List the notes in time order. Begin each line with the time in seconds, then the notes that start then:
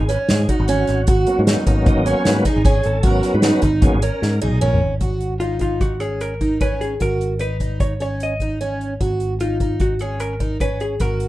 Already playing: G#4
0.01 G#1
0.09 C#4 B4, closed hi-hat
0.29 G#2 G#4, snare, closed hi-hat
0.49 D#4 F#4, kick, closed hi-hat
0.60 G#1
0.68 C#4, closed hi-hat
0.87 G#1, snare, closed hi-hat
1.07 G#1 F#4, kick, closed hi-hat
1.27 F#3 A#3 B3 C#4, closed hi-hat
1.39 G#2
1.47 D#4, snare, closed hi-hat
1.67 G#1 D#4, kick, closed hi-hat
1.86 D#5, kick, closed hi-hat
1.97 G#1
2.06 C#4 C#5, closed hi-hat
2.25 G#2 F#3 A#3 B3 C#4 B4, snare, closed hi-hat
2.45 D#4 G#4, kick, snare, closed hi-hat
2.56 G#1
2.65 C#4, kick, snare, closed hi-hat
2.83 G#1 A4, closed hi-hat
3.03 G#1 F#3 B3 C#4 F#4 A#4, kick, closed hi-hat
3.23 snare, closed hi-hat
3.33 G#2 B4
3.42 D#4, snare, closed hi-hat
3.62 G#1 D#4, kick, closed hi-hat
3.81 F#3 A#3 B3 C#4 G#4, kick, closed hi-hat
3.94 G#1
4.02 C#4 A#4, closed hi-hat
4.22 G#2, snare
4.42 B1 D#4 G#4
4.48 high tom
4.61 A#1 C#4 A#4, mid tom
4.74 mid tom
4.83 G#1
5.01 G#1 F#4, kick, closed hi-hat
5.20 closed hi-hat
5.40 D#4 F4, closed hi-hat
5.59 D#4 F4, kick, closed hi-hat
5.81 F#4, kick, closed hi-hat
6.00 C#4 G#4, closed hi-hat
6.21 A#4, closed hi-hat
6.41 D#4, kick, closed hi-hat
6.61 C#4 B4, kick, closed hi-hat
6.81 G#4, closed hi-hat
7.00 G#1 F#4 A#4, kick, closed hi-hat
7.21 closed hi-hat
7.39 D#4 B4, closed hi-hat
7.60 D#4, kick, closed hi-hat
7.80 C#5, kick, closed hi-hat
8.00 C#4 C#5, closed hi-hat
8.20 D#5, closed hi-hat
8.40 D#4, kick, closed hi-hat
8.61 C#4, closed hi-hat
8.81 closed hi-hat
9.01 G#1 F#4, kick, closed hi-hat
9.20 closed hi-hat
9.40 D#4 F4, closed hi-hat
9.60 D#4, kick, closed hi-hat
9.80 F#4, kick, closed hi-hat
9.99 C#4 G#4, closed hi-hat
10.20 A#4, closed hi-hat
10.40 D#4, kick, closed hi-hat
10.60 C#4 B4, kick, closed hi-hat
10.80 G#4, closed hi-hat
11.00 G#1 F#4 A#4, kick, closed hi-hat
11.20 closed hi-hat